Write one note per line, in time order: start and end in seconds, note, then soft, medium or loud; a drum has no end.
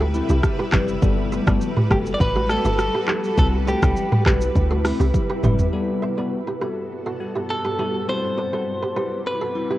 0.00 0.22 D2 loud
0.00 1.00 C3 medium
0.00 3.34 G3 medium
0.00 1.00 E4 medium
0.00 0.10 F#4 medium
0.00 0.10 A4 medium
0.00 1.00 B4 medium
0.00 high conga medium
0.14 0.36 G3 medium
0.14 0.37 C4 medium
0.14 0.37 E4 medium
0.14 0.37 B4 medium
0.14 high conga medium
0.14 shaker medium
0.29 0.41 C2 medium
0.29 0.40 E4 medium
0.29 0.39 G4 medium
0.29 shaker medium
0.43 kick medium
0.43 cross-stick loud
0.43 shaker medium
0.59 0.69 G4 medium
0.59 0.69 B4 medium
0.72 0.97 F#1 medium
0.72 0.95 G3 medium
0.72 0.95 C4 medium
0.72 0.95 E4 medium
0.72 0.84 E4 medium
0.72 0.84 G4 medium
0.72 0.96 B4 medium
0.72 kick loud
0.72 cross-stick medium
0.72 clap medium
0.72 low conga medium
0.72 shaker medium
0.88 shaker medium
1.02 1.40 G1 loud
1.02 1.43 G3 medium
1.02 1.44 B3 medium
1.02 1.44 F#4 medium
1.02 3.36 F#4 medium
1.02 3.36 A4 medium
1.02 1.44 A4 loud
1.02 3.36 B4 medium
1.02 kick loud
1.02 shaker medium
1.32 1.43 C5 medium
1.32 1.42 E5 medium
1.32 high conga medium
1.32 shaker medium
1.47 1.59 G1 medium
1.47 1.69 G3 medium
1.47 1.69 B3 medium
1.47 1.69 F#4 medium
1.47 1.69 A4 medium
1.47 1.57 B4 medium
1.47 1.57 D5 medium
1.47 kick loud
1.47 cross-stick loud
1.47 high conga medium
1.47 shaker medium
1.61 low conga medium
1.61 shaker medium
1.77 1.87 G4 medium
1.77 1.86 B4 medium
1.77 mid tom medium
1.77 high conga medium
1.90 2.15 F#1 medium
1.90 2.13 G3 medium
1.90 2.13 B3 medium
1.90 2.13 F#4 medium
1.90 1.98 G4 medium
1.90 2.02 G4 medium
1.90 2.13 A4 medium
1.90 2.01 B4 medium
1.90 kick medium
1.90 cross-stick loud
1.90 high conga medium
1.90 low conga medium
1.90 shaker medium
2.06 shaker medium
2.14 2.20 D5 medium
2.20 2.57 A1 loud
2.20 2.50 B4 loud
2.20 kick medium
2.20 shaker medium
2.36 2.46 F#4 medium
2.36 2.45 A4 medium
2.36 high conga medium
2.49 2.72 G3 medium
2.49 2.72 B3 medium
2.49 2.72 F#4 medium
2.49 2.72 A4 medium
2.49 3.38 A4 loud
2.49 cross-stick medium
2.49 high conga medium
2.49 shaker medium
2.65 2.89 G1 medium
2.65 2.75 E4 medium
2.65 2.75 G4 medium
2.65 shaker medium
2.79 cross-stick loud
2.79 shaker medium
2.94 3.05 G4 medium
2.94 3.04 B4 medium
3.08 3.31 G3 medium
3.08 3.31 B3 medium
3.08 3.20 E4 medium
3.08 3.31 F#4 medium
3.08 3.19 G4 medium
3.08 3.31 A4 medium
3.08 cross-stick loud
3.08 clap medium
3.08 low conga medium
3.08 shaker medium
3.24 shaker medium
3.37 3.75 C2 loud
3.37 5.71 C3 medium
3.37 3.79 G3 loud
3.37 5.71 G3 medium
3.37 3.79 C4 medium
3.37 5.71 E4 medium
3.37 3.79 E4 medium
3.37 3.47 A4 loud
3.37 5.71 B4 medium
3.37 3.79 B4 loud
3.37 kick loud
3.37 shaker medium
3.67 4.23 G4 medium
3.67 3.78 B4 medium
3.67 3.78 D5 medium
3.67 high conga medium
3.67 shaker medium
3.82 3.94 C2 medium
3.82 4.04 G3 medium
3.82 4.04 C4 medium
3.82 4.04 E4 medium
3.82 3.93 A4 medium
3.82 4.04 B4 medium
3.82 3.92 C5 medium
3.82 kick loud
3.82 cross-stick loud
3.82 high conga medium
3.82 shaker medium
3.96 low conga medium
3.96 shaker medium
4.12 4.22 G4 medium
4.12 4.22 B4 medium
4.12 mid tom medium
4.12 high conga medium
4.26 4.50 B1 medium
4.26 4.48 G3 medium
4.26 4.48 C4 medium
4.26 4.49 E4 medium
4.26 4.37 G4 medium
4.26 4.36 B4 medium
4.26 4.49 B4 medium
4.26 kick medium
4.26 cross-stick loud
4.26 clap loud
4.26 high conga medium
4.26 low conga medium
4.26 shaker medium
4.41 shaker medium
4.55 4.93 D2 medium
4.55 kick medium
4.55 shaker medium
4.71 4.81 F#4 medium
4.71 4.80 A4 medium
4.71 high conga medium
4.85 5.07 G3 medium
4.85 5.07 C4 medium
4.85 5.07 E4 medium
4.85 5.07 B4 medium
4.85 cross-stick loud
4.85 open hi-hat medium
4.85 high conga medium
4.85 shaker medium
5.00 5.12 C2 medium
5.00 5.10 E4 medium
5.00 5.10 G4 medium
5.00 shaker medium
5.14 kick loud
5.14 high tom medium
5.14 shaker medium
5.30 5.40 G4 medium
5.30 5.39 B4 medium
5.43 5.68 F#1 medium
5.43 5.66 G3 medium
5.43 5.66 C4 medium
5.43 5.66 E4 medium
5.43 5.55 E4 medium
5.43 5.54 G4 medium
5.43 5.66 B4 medium
5.43 mid tom loud
5.43 high conga medium
5.43 low conga medium
5.43 shaker medium
5.59 floor tom loud
5.59 shaker medium
5.73 8.06 G2 medium
5.73 6.14 G3 medium
5.73 6.14 B3 medium
5.73 8.06 B3 medium
5.73 8.06 F#4 medium
5.73 6.14 F#4 medium
5.73 8.06 A4 medium
5.73 6.14 A4 loud
6.02 6.13 C5 medium
6.02 6.13 E5 medium
6.17 6.39 G3 medium
6.17 6.39 B3 medium
6.17 6.40 F#4 medium
6.17 6.40 A4 medium
6.17 6.28 B4 soft
6.17 6.27 D5 medium
6.47 6.57 G4 medium
6.47 6.57 B4 medium
6.61 6.84 G3 medium
6.61 6.84 B3 medium
6.61 6.84 F#4 medium
6.61 6.72 G4 medium
6.61 6.84 A4 medium
6.61 6.72 B4 medium
7.06 7.16 F#4 medium
7.06 7.16 A4 medium
7.20 7.42 G3 medium
7.20 7.43 B3 medium
7.20 7.43 F#4 medium
7.20 7.43 A4 medium
7.35 7.46 E4 medium
7.35 7.45 G4 medium
7.50 8.09 A4 medium
7.65 7.75 G4 medium
7.65 7.74 B4 medium
7.79 8.01 G3 medium
7.79 8.01 B3 medium
7.79 7.90 E4 medium
7.79 8.01 F#4 medium
7.79 7.89 G4 medium
7.79 8.02 A4 medium
8.08 9.79 C3 medium
8.08 8.49 G3 medium
8.08 9.79 G3 medium
8.08 8.49 C4 medium
8.08 9.79 E4 medium
8.08 8.49 E4 medium
8.08 8.50 C5 loud
8.08 9.22 C5 loud
8.38 8.49 B4 medium
8.38 8.48 D5 medium
8.53 8.75 G3 medium
8.53 8.75 C4 medium
8.53 8.75 E4 medium
8.53 8.63 A4 medium
8.53 8.75 B4 medium
8.53 8.63 C5 medium
8.83 8.93 G4 medium
8.83 8.92 B4 medium
8.96 9.19 G3 medium
8.96 9.19 C4 medium
8.96 9.19 E4 medium
8.96 9.07 G4 medium
8.96 9.07 B4 medium
8.96 9.19 B4 medium
9.27 9.79 B4 medium
9.41 9.51 F#4 medium
9.41 9.51 A4 medium
9.55 9.78 G3 medium
9.55 9.78 C4 medium
9.55 9.78 E4 medium
9.55 9.78 B4 medium
9.71 9.79 E4 medium
9.71 9.79 G4 medium